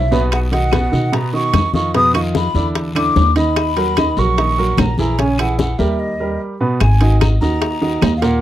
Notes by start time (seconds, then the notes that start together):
Already playing: B1 E5
0.11 B2 B3 B4, high bongo, high conga, low timbale, short guiro
0.32 F#5, high bongo, high conga, high timbale, long guiro, claves
0.52 D#3 D#4 F#4 F#5, high bongo, high conga, high timbale
0.72 B2 B3 B4, high bongo, high conga, high timbale, short guiro, claves
0.92 B2 D#3 D#4 F#4, high bongo, high conga, short guiro
1.12 B2 B3 B4 A#5, high bongo, high conga, high timbale, long guiro
1.33 D#3 D#4 F#4 C#6, high conga
1.53 F2, high bongo, low bongo, high conga, high timbale, short guiro, claves
1.74 D#3 D#4 F4 C#6, high bongo, high conga, short guiro
1.94 B2 B3 B4 D#6, high bongo, high conga, high timbale, long guiro
2.14 D#3 D#4 F4 C#6, high bongo, high conga, high timbale, claves
2.35 B5, high bongo, high conga, short guiro
2.54 E2 D3 D4 E4, high bongo, high conga, short guiro
2.75 high bongo, high conga, high timbale, long guiro
2.95 D3 D4 E4 D6, high conga, high timbale, claves
3.16 D#2, high bongo, low bongo, high conga, low timbale, short guiro
3.36 D#3 D#4 D#5 B5, high bongo, high conga, high timbale, short guiro
3.56 high bongo, high conga, high timbale, long guiro, claves
3.76 F#3 F#4 A#4, high bongo, high conga, high timbale
3.96 D#3 D#4 D#5, high bongo, high conga, high timbale, short guiro, claves
4.17 A#1 F#3 F#4 A#4 C#6, high bongo, high conga, short guiro
4.38 D#3 D#4 D#5, high bongo, high conga, high timbale, long guiro
4.58 F#3 F#4 A#4, high conga
4.77 A#1 A#5, high bongo, low bongo, high conga, high timbale, low timbale, short guiro, claves
4.98 E3 E4 G#4 A#5, high bongo, high conga, short guiro
5.18 C#3 C#4 C#5 G#5, high bongo, high conga, high timbale, long guiro
5.38 E3 E4 G#4 F#5, high bongo, high conga, high timbale, claves
5.59 F#5, high bongo, high conga, short guiro
5.78 D#2 G3 G4 A#4 E5, high bongo, high conga, short guiro
5.99 D#5
6.20 G3 G4 A#4
6.60 B2 B3 B4
6.80 G#1 G#5, high bongo, high conga, high timbale, long guiro, claves
7.01 D#3 D#4 F#4, high conga, high timbale
7.20 A#5, high bongo, high conga, high timbale, low timbale, short guiro, claves
7.41 D#2 D#3 D#4 F#4 A#5, high bongo, high conga, short guiro
7.62 high bongo, high conga, high timbale, long guiro
7.81 D#3 D#4 F#4, high bongo, high conga
8.02 D#2, high bongo, low bongo, high conga, high timbale, low timbale, short guiro, claves
8.17 F5
8.22 A#2 A#3 A#4 F#5, high bongo, high conga, high timbale, short guiro